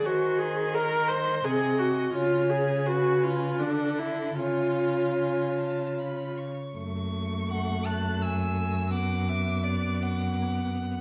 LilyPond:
<<
  \new Staff \with { instrumentName = "Violin" } { \time 3/4 \key fis \minor \tempo 4 = 84 gis''4 fis''4 gis''4 | gis''2 fis''4 | gis''4 gis''8 a''8 b''8 cis'''8 | cis'''4. fis'''8 e'''4 |
d'''2~ d'''8 r8 | }
  \new Staff \with { instrumentName = "Violin" } { \time 3/4 \key fis \minor bis'4 dis''4 dis''4 | cis''4 b'4 a'4 | cis''2~ cis''8 r8 | r4 fis''8 a''8 gis''4 |
fis''8 e''8 d''8 fis''4. | }
  \new Staff \with { instrumentName = "Viola" } { \time 3/4 \key fis \minor fis'8 gis'8 ais'8 bis'8 gis'8 fis'8 | eis'8 gis'8 fis'8 eis'8 d'8 e'8 | eis'2~ eis'8 r8 | a2. |
b2. | }
  \new Staff \with { instrumentName = "Cello" } { \clef bass \time 3/4 \key fis \minor dis2 bis,4 | cis2 d4 | cis2~ cis8 r8 | fis,2.~ |
fis,2. | }
>>